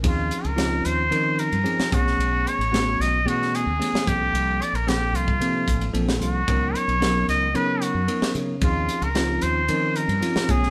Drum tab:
RD |x-xxx-x-x-xxx-x-|x-xxx-x-x-x-x-x-|x-xxx-x-x-xxx-x-|x-xxx-x-x-x-x-x-|
HH |--p---p---p---p-|--p---p---p---p-|--p---p---p---p-|--p---p---p---p-|
SD |----o--------o-o|----o-o--o--oo--|----o--------o--|----o-o------o--|
BD |o-------------o-|--------------o-|-------o--o-----|o---------------|

RD |x-xxx-x-x-xxx-x-|
HH |--p---p---p---p-|
SD |----o-------oo-o|
BD |o-------------o-|